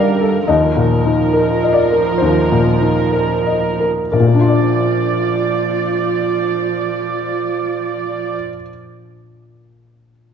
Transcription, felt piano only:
0.00 0.44 G2 soft
0.00 0.50 D3 soft
0.00 0.50 D4 soft
0.00 0.21 A4 soft
0.00 0.50 A#4 soft
0.00 0.50 D5 soft
0.00 0.48 D#5 medium
0.00 0.44 F5 medium
0.21 0.48 A4 soft
0.48 2.16 D#2 soft
0.48 1.62 D#5 soft
0.77 1.21 A#2 soft
1.06 1.50 D#4 soft
1.33 1.78 A#4 soft
1.63 2.09 D#5 soft
1.73 2.15 D5 soft
1.92 2.39 A#4 soft
2.18 4.11 D#2 soft
2.18 3.09 C5 soft
2.52 3.01 A#2 soft
2.82 3.33 D#4 soft
3.12 3.79 A#4 soft
3.47 4.00 D#5 soft
3.80 4.10 A#4 soft
4.12 8.34 A#1 soft
4.12 8.33 A#4 soft
4.20 8.41 A#2 soft
4.27 8.48 A#3 soft
4.34 8.55 D4 soft
4.41 8.62 F4 soft
4.48 8.69 D5 soft

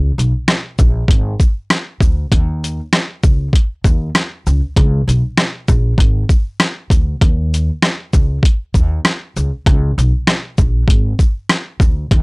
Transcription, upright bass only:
0.00 0.10 C#2 loud
0.18 0.30 B1 loud
0.79 1.02 A#1 medium
1.09 1.32 G#1 loud
2.01 2.24 D2 loud
2.32 2.79 D#2 loud
3.24 3.47 C#2 medium
3.85 4.08 D#2 loud
4.47 4.59 C#2 loud
4.77 5.00 C#2 loud
5.08 5.20 B1 loud
5.69 5.92 A#1 loud
5.98 6.22 G#1 medium
6.91 7.14 D2 loud
7.22 7.68 D#2 loud
8.14 8.37 C#2 medium
8.75 8.98 D#2 medium
9.36 9.49 C#2 loud
9.67 9.90 C#2 loud
9.98 10.10 B1 loud
10.59 10.82 A#1 loud
10.88 11.12 G#1 medium
11.80 12.04 D2 loud
12.11 12.22 D#2 loud

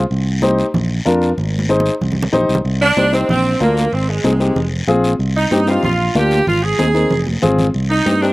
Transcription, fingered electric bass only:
0.11 0.62 C2 medium
0.74 1.00 A#1 medium
1.06 1.32 F2 loud
1.38 1.89 G#1 loud
2.01 2.27 C2 medium
2.33 2.48 A#1 medium
2.49 2.63 C2 medium
2.65 2.90 C2 medium
2.97 3.22 C2 medium
3.29 3.54 A#1 medium
3.61 3.86 D2 loud
3.93 4.18 G#1 medium
4.24 4.50 C2 medium
4.56 4.81 F1 medium
4.87 5.13 A#1 loud
5.19 5.45 C2 medium
5.51 5.77 G2 medium
5.83 6.09 A#1 medium
6.15 6.41 D2 loud
6.47 6.72 G#1 medium
6.79 7.04 D#2 medium
7.11 7.36 F1 medium
7.43 7.68 G#1 loud
7.75 8.00 C2 medium
8.06 8.32 G2 medium

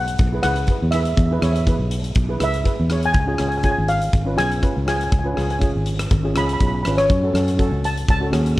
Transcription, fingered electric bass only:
0.00 0.17 B1 medium
0.19 0.42 B1 medium
0.44 0.67 C#2 medium
0.82 1.16 E2 medium
1.17 1.40 E2 medium
1.42 1.78 E2 medium
1.79 2.13 B1 medium
2.16 2.39 B1 medium
2.40 2.64 C#2 medium
2.79 3.13 E2 medium
3.14 3.38 C#2 medium
3.40 3.75 C#2 medium
3.78 4.12 G#1 medium
4.13 4.37 G#1 loud
4.38 4.61 B1 medium
4.77 5.10 C#2 medium
5.12 5.35 C#2 medium
5.37 5.72 C#2 medium
5.75 6.09 G#1 medium
6.11 6.34 G#1 loud
6.36 6.58 C#2 medium
6.60 6.82 B1 medium
6.86 7.07 G#1 medium
7.10 7.33 F#2 medium
7.34 7.69 F#2 medium
7.71 8.05 C#2 medium
8.09 8.31 C#2 medium
8.32 8.56 D#2 medium

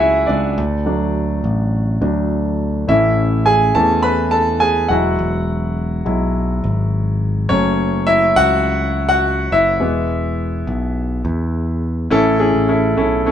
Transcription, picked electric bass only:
0.00 0.25 C#2 medium
0.29 0.56 C#2 medium
0.58 1.40 D2 loud
1.44 1.98 A1 medium
2.02 2.84 D2 medium
2.89 3.71 A1 loud
3.76 4.87 E2 medium
4.90 5.17 E1 medium
5.19 6.02 E1 loud
6.06 6.60 B1 medium
6.64 7.46 G#1 loud
7.50 8.33 F#1 loud
8.36 9.48 C#2 medium
9.52 9.81 F#1 medium
9.81 10.63 E1 loud
10.67 11.21 B1 medium
11.25 12.07 E2 medium
12.11 12.51 A1 loud
12.55 12.95 A1 medium
12.98 13.32 B1 medium

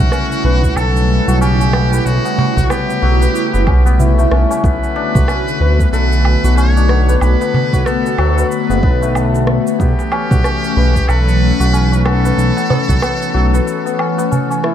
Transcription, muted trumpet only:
0.00 0.78 F#4 loud
0.76 1.40 A4 loud
1.41 2.07 G4 loud
2.05 2.71 F#4 loud
2.70 4.31 G4 loud
4.64 5.89 B4 loud
5.92 6.58 B4 loud
6.56 7.16 C#5 loud
7.16 7.22 C#5 medium
7.21 7.87 B4 loud
7.86 8.50 A4 loud
8.50 9.43 B4 medium
9.80 11.10 G4 loud
11.09 12.04 B4 loud
12.05 14.27 A4 loud

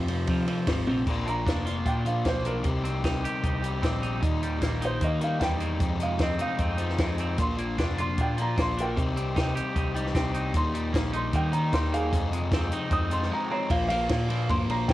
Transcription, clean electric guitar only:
0.08 0.27 F2 medium
0.08 0.28 C3 medium
0.08 0.29 F3 medium
0.28 0.45 F2 medium
0.28 0.46 C3 medium
0.28 0.47 F3 loud
0.47 0.66 F2 medium
0.47 0.66 C3 medium
0.47 0.66 F3 medium
0.67 0.85 F2 medium
0.67 0.86 C3 medium
0.67 0.86 F3 medium
0.87 1.05 F2 medium
0.87 1.05 C3 medium
0.87 1.05 F3 medium
1.06 2.05 A#2 medium
1.27 2.25 A#3 medium
1.47 1.84 D4 medium
1.66 2.65 F4 medium
1.86 2.45 D4 medium
2.05 2.65 F3 medium
2.25 2.67 A#3 medium
2.46 2.65 D4 medium
2.64 3.63 C3 medium
2.84 3.82 C4 medium
3.04 3.44 D#4 medium
3.24 4.23 G4 medium
3.44 4.02 D#4 medium
3.64 4.23 G3 medium
3.83 4.23 C4 medium
4.02 4.61 D#4 medium
4.21 5.21 D#2 medium
4.43 5.40 G3 medium
4.62 5.01 A#3 medium
4.82 5.81 D#4 medium
5.02 5.59 A#3 medium
5.21 5.80 D#3 medium
5.42 5.81 G3 medium
5.61 5.81 A#3 medium
5.81 6.80 F2 medium
6.02 6.98 G#3 medium
6.23 6.59 C4 medium
6.41 7.39 D#4 medium
6.60 7.19 C4 medium
6.78 7.38 F3 medium
6.99 7.39 G#3 medium
7.20 7.39 C4 medium
7.39 8.38 A#2 medium
7.59 8.57 A#3 medium
7.78 8.17 D4 medium
7.98 8.97 F4 medium
8.18 8.76 D4 medium
8.38 8.97 F3 medium
8.58 9.00 A#3 medium
8.77 8.97 D4 medium
8.97 9.96 C3 medium
9.16 10.14 C4 medium
9.36 9.75 D#4 medium
9.55 10.55 G4 medium
9.76 10.34 D#4 medium
9.95 10.55 G3 medium
10.15 10.55 C4 medium
10.34 10.92 D#4 medium
10.55 11.54 D#2 medium
10.74 11.72 G3 medium
10.93 11.33 A#3 medium
11.13 12.12 D#4 medium
11.34 11.91 A#3 medium
11.54 12.13 D#3 medium
11.74 12.13 G3 medium
11.92 12.13 A#3 medium
12.12 13.11 F2 medium
12.33 13.30 G#3 medium
12.54 12.91 C4 medium
12.73 13.71 D#4 medium
12.92 13.50 C4 medium
13.12 13.70 F3 medium
13.31 13.71 G#3 medium
13.51 13.71 C4 medium
13.70 13.89 A#2 medium
13.70 13.90 F3 loud
13.70 13.90 A#3 loud
13.90 14.09 A#2 medium
13.90 14.10 F3 medium
13.90 14.11 A#3 loud
14.10 14.29 A#2 medium
14.10 14.30 F3 medium
14.10 14.31 A#3 medium
14.31 14.49 A#2 medium
14.31 14.49 F3 medium
14.31 14.50 A#3 medium
14.50 14.69 A#2 medium
14.50 14.69 F3 loud
14.50 14.70 A#3 loud
14.70 14.88 A#2 medium
14.70 14.88 F3 medium
14.70 14.90 A#3 medium
14.89 14.93 A#2 medium
14.89 14.93 F3 medium
14.89 14.93 A#3 loud

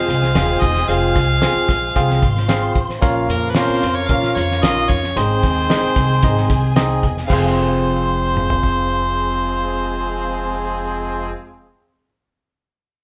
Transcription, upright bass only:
0.09 0.31 C2 loud
0.35 0.58 D#1 loud
0.62 0.85 E1 loud
0.88 1.11 F1 loud
1.16 1.38 C2 loud
1.55 muted upright bass stroke medium
1.69 1.92 A#1 medium
1.96 2.19 C2 loud
2.23 2.68 G#1 loud
2.76 2.99 A1 medium
3.02 3.25 A#1 loud
3.29 3.52 F2 loud
3.69 muted upright bass stroke medium
3.82 4.05 F2 medium
4.10 4.32 A#2 loud
4.36 4.59 F2 loud
4.63 4.86 A#1 medium
4.90 5.12 F2 medium
5.16 5.39 G#1 loud
5.44 5.66 D#2 loud
5.82 muted upright bass stroke soft
5.96 6.19 C2 medium
6.23 6.46 G#1 loud
6.50 6.96 C2 loud
7.03 7.26 E1 medium
7.30 11.32 F1 loud

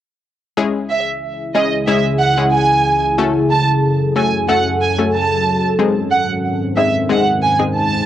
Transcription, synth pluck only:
0.57 1.48 G#3 medium
0.57 1.48 C#4 medium
0.57 1.48 E4 medium
0.57 1.48 G#4 loud
1.55 1.85 G#3 medium
1.55 1.85 C#4 medium
1.55 1.85 E4 medium
1.55 1.86 G#4 medium
1.88 2.01 G#3 medium
1.88 2.01 C#4 medium
1.88 2.01 E4 medium
1.88 2.01 G#4 loud
2.37 2.49 G#3 medium
2.37 2.49 C#4 medium
2.37 2.49 E4 medium
2.37 2.49 G#4 medium
3.18 4.09 A3 medium
3.18 4.09 C#4 medium
3.18 4.09 F#4 medium
3.18 4.09 A4 loud
4.16 4.46 A3 medium
4.16 4.46 C#4 medium
4.16 4.46 F#4 medium
4.16 4.46 A4 medium
4.48 4.61 A3 medium
4.48 4.62 C#4 medium
4.48 4.62 F#4 medium
4.48 4.62 A4 loud
4.98 5.10 A3 medium
4.98 5.10 C#4 medium
4.98 5.10 F#4 medium
4.98 5.10 A4 medium
5.79 6.69 G#3 medium
5.79 6.70 C4 medium
5.79 6.70 D#4 medium
5.79 6.70 G#4 medium
6.77 7.07 G#3 medium
6.77 7.07 C4 medium
6.77 7.07 D#4 medium
6.77 7.07 G#4 medium
7.09 7.22 G#3 medium
7.09 7.22 C4 medium
7.09 7.22 D#4 medium
7.09 7.23 G#4 loud
7.59 7.71 G#3 medium
7.59 7.71 C4 medium
7.59 7.71 D#4 medium
7.59 7.71 G#4 medium

